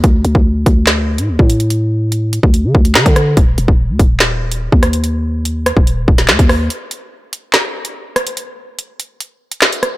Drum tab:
HH |x-x---x-x--x--xx|x---x-x-x--x-xx-|x-x---x-x--x--xx|x---x-x-x--x-xo-|
CP |--------x-------|------------x---|--------x-------|------------x---|
SD |--------o-------|------------o-r-|--------o-----r-|------r----oo-r-|
BD |o--o--o------o--|-------o--o--o--|o--o--o------o--|-------o--o--o--|

HH |x-x---x-x--x--xx|x---x-x-x--x-xx-|
CP |--------x-------|------------x---|
SD |--------o-----r-|------------o-r-|
BD |----------------|----------------|